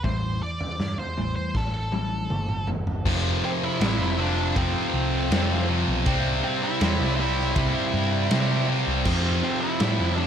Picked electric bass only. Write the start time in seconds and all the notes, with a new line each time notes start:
0.04 A1
0.80 G2
1.17 A1
1.55 A1
2.31 G1
3.06 F1
3.81 A1
3.99 F1
4.56 F1
4.94 C2
5.31 F2
5.88 B1
6.07 C2
6.81 E2
7.00 C2
7.56 C2
7.94 G2
8.31 C3
8.87 C2
9.06 F2
9.81 A2
10.00 F2